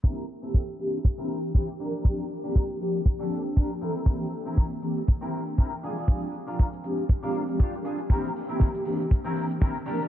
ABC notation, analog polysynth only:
X:1
M:4/4
L:1/16
Q:"Swing 16ths" 1/4=119
K:Cmix
V:1 name="Analog polysynth"
[E,B,CDG] z2 [E,B,CDG]3 [E,B,CDG] z2 [E,B,CDG]3 [E,B,CDG] z [F,B,CDB] z | [F,B,CDG] z2 [F,B,CDG]3 [F,B,CDG] z2 [F,B,CDG]3 [F,B,G] z [E,B,CDA] z | [E,B,CDG] z2 [E,B,CDG]3 [E,B,CDG] z2 [E,B,CDG]3 [E,B,CDG] z [F,_A,CD_A] z | [F,_A,CDG] z2 [F,A,CDg]3 [F,A,CDG] z2 [F,A,CDG]2 [F,A,CDG] z [F,A,CDB] z2 |
[E,B,CDG] z2 [E,B,CDG]3 [E,B,CDG] z2 [E,B,CDG]3 [E,B,CDG] z [F,B,CDB] z |]